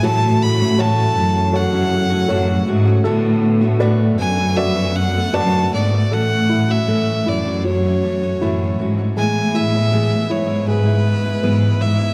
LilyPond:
<<
  \new Staff \with { instrumentName = "Violin" } { \time 4/4 \key a \major \tempo 4 = 79 a''8 b''8 a''4 fis''4. r8 | r4. gis''8 e''8 fis''8 a''8 d''8 | fis''8. e''8. d''8 cis''4. r8 | gis''8 e''4 cis''8 b'4. e''8 | }
  \new Staff \with { instrumentName = "Upright piano" } { \time 4/4 \key a \major fis4 <fis' a' cis''>4 <fis' a' cis''>4 <fis' a' cis''>4 | a'4 <fis' b' d''>4 <fis' b' d''>4 <fis' b' d''>4 | a'8 e'8 a8 e'8 fis4 e'4 | gis8 e'8 gis'8 e'8 gis'4 b4 | }
  \new Staff \with { instrumentName = "French horn section" } { \time 4/4 \key a \major << { <cis e' a'>1 | <d b a'>1 | r1 | r1 | } \\ { <fis fis'>1~ | <fis fis'>1 | r1 | r1 | } >> }
  \new Staff \with { instrumentName = "Steel-string acoustic guitar" } { \time 4/4 \key a \major <a, e a cis' fis'>8. <a cis' fis'>16 <a, e a cis' fis'>8 <e a cis' fis'>8. <a cis' fis'>8 <a cis' fis'>16 <a, e a cis' fis'>8 <e a cis' fis'>16 <a cis' fis'>16 | <a, d a b fis'>8. <a b fis'>16 <a, d a b fis'>8 <d a b fis'>16 <a b fis'>8 <a b fis'>8 <a b fis'>16 <a, d a b fis'>8 <d a b fis'>16 <a b fis'>16 | <a, e a cis' fis'>8. <a cis' fis'>16 <a, e a cis' fis'>8. <a cis' fis'>8 <a cis' fis'>16 <e a cis' fis'>16 <a cis' fis'>16 <a, e a cis' fis'>8 <e a cis' fis'>16 <a cis' fis'>16 | <a, e gis b e'>8. <gis b e'>16 <a, e gis b e'>8. <gis b e'>8 <gis b e'>16 <e gis b e'>16 <gis b e'>16 <e gis b e'>8 <e gis b e'>16 <gis b e'>16 | }
  \new Staff \with { instrumentName = "Cello section" } { \clef bass \time 4/4 \key a \major a,4. fis,4. fis,8 gis,8 | a,4. fis,4. fis,8 gis,8 | a,4. fis,4. fis,8 gis,8 | a,4. gis,4. gis,8 gis,8 | }
>>